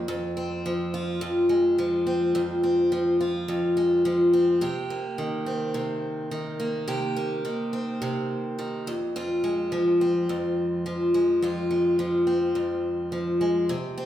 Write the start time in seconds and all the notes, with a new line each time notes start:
Already playing: C4
0.08 F2
0.37 C4
0.66 F3
0.94 F4
1.21 F2
1.49 G#3
1.78 F3
2.07 C4
2.35 F2
2.63 C4
2.92 F3
3.21 F4
3.48 F2
3.77 G#3
4.05 F3
4.33 C4
4.61 C3 G4
4.90 A#3
5.18 D#3
5.46 C4
5.74 C3
6.31 D#3
6.60 A#3
6.88 C3 G4
7.16 A#3
7.45 D#3
7.73 C4
8.02 C3
8.59 D#3
8.87 F2
9.16 F2 F4
9.44 G#3
9.72 F3
10.01 C4
10.29 F2
10.86 F3
11.14 G#3
11.42 F2 F4
11.71 G#3
11.99 F3
12.27 C4
12.55 F2
13.12 F3
13.41 G#3
13.69 C3
13.98 C4